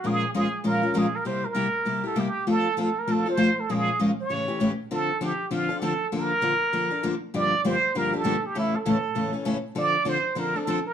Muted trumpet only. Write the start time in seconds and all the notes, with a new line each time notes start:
0.07 G#4
0.35 G#4
0.66 A#4
0.98 G#4
1.15 A#4
1.27 C5
1.45 A#4
2.07 A4
2.20 G4
2.50 A4
2.81 A4
2.99 A#4
3.12 A4
3.29 C5
3.60 A4
3.71 G#4
4.21 C#5
4.92 A4
5.23 G4
5.52 F4
5.82 A4
6.13 A#4
7.35 D5
7.67 C5
7.97 A#4
8.16 A4
8.46 G4
8.59 E4
8.76 A4
9.78 D5
10.08 C5
10.39 A#4
10.56 A4
10.87 A#4